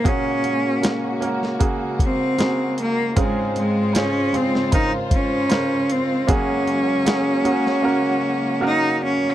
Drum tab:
HH |x-x-x-x-x-x-x-x-|x-x-x-x-x-x-x-x-|x-x-x-x---------|
SD |----o--o----o---|----o--o----o---|----o--o--------|
BD |o-------o-o-----|o-------o-o-----|o---------------|